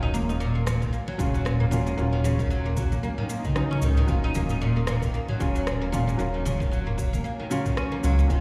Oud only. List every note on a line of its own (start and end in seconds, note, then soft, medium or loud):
0.03 0.13 D#4 loud
0.14 0.28 A#3 loud
0.29 0.36 D#4 medium
0.40 0.55 A#2 loud
0.55 0.66 A#3 medium
0.67 0.81 A#2 medium
0.82 0.92 D#3 medium
0.93 1.01 A#3 medium
1.08 1.19 F#3 medium
1.19 1.33 C#3 medium
1.34 1.45 F#3 medium
1.45 1.54 A#2 medium
1.60 1.71 A#3 medium
1.71 1.86 A#2 medium
1.87 1.93 G#3 medium
1.98 2.07 A#3 medium
2.13 2.19 D#3 medium
2.24 2.38 C#3 medium
2.39 2.50 D#3 medium
2.50 2.65 F#3 medium
2.66 2.76 A#3 medium
2.77 2.91 F#3 medium
2.92 3.02 A#3 medium
3.03 3.12 A#3 medium
3.18 3.25 D#3 medium
3.29 3.44 A#3 medium
3.45 3.56 D#3 medium
3.56 3.70 D#4 medium
3.71 3.81 C#4 medium
3.83 3.96 D#3 medium
3.97 4.08 D#3 medium
4.09 4.22 D#3 medium
4.24 4.35 D#4 medium
4.35 4.49 A#3 loud
4.50 4.57 D#4 medium
4.62 4.76 A#2 medium
4.77 4.87 A#3 medium
4.88 5.02 A#2 medium
5.03 5.13 D#3 medium
5.14 5.23 A#3 medium
5.29 5.40 F#3 medium
5.40 5.54 C#3 medium
5.55 5.66 F#3 medium
5.67 5.75 A#2 medium
5.82 5.92 A#3 medium
5.92 6.07 A#2 medium
6.07 6.14 G#3 medium
6.19 6.28 A#3 medium
6.34 6.41 D#3 medium
6.45 6.59 C#3 loud
6.60 6.71 D#3 medium
6.72 6.86 F#3 medium
6.87 6.97 A#3 medium
6.98 7.12 F#3 medium
7.13 7.23 A#3 medium
7.24 7.33 A#3 medium
7.40 7.46 D#3 medium
7.51 7.64 C#3 medium
7.66 7.76 D#3 medium
7.77 7.92 C#4 medium
7.92 8.02 A#3 medium
8.04 8.17 F#3 medium
8.19 8.29 A#3 medium
8.30 8.40 D#3 medium